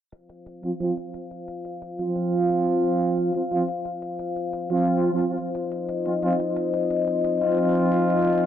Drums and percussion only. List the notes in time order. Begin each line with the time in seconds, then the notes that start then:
0.12 closed hi-hat
0.29 closed hi-hat
0.46 closed hi-hat
0.63 closed hi-hat
0.80 closed hi-hat
0.97 closed hi-hat
1.14 closed hi-hat
1.31 closed hi-hat
1.48 closed hi-hat
1.65 closed hi-hat
1.82 closed hi-hat
1.99 closed hi-hat
2.16 closed hi-hat
2.33 closed hi-hat
2.50 closed hi-hat
2.67 closed hi-hat
2.84 closed hi-hat
3.00 closed hi-hat
3.17 closed hi-hat
3.34 closed hi-hat
3.51 closed hi-hat
3.68 closed hi-hat
3.85 closed hi-hat
4.02 closed hi-hat
4.19 closed hi-hat
4.36 closed hi-hat
4.53 closed hi-hat
4.70 closed hi-hat
4.87 closed hi-hat
5.04 closed hi-hat
5.21 closed hi-hat
5.38 closed hi-hat
5.55 closed hi-hat
5.72 closed hi-hat
5.89 closed hi-hat
6.06 closed hi-hat
6.22 closed hi-hat
6.39 closed hi-hat
6.56 closed hi-hat
6.73 closed hi-hat
6.90 closed hi-hat
7.07 closed hi-hat
7.24 closed hi-hat
7.41 closed hi-hat
7.58 closed hi-hat
7.75 closed hi-hat
7.92 closed hi-hat
8.09 closed hi-hat
8.26 closed hi-hat
8.43 closed hi-hat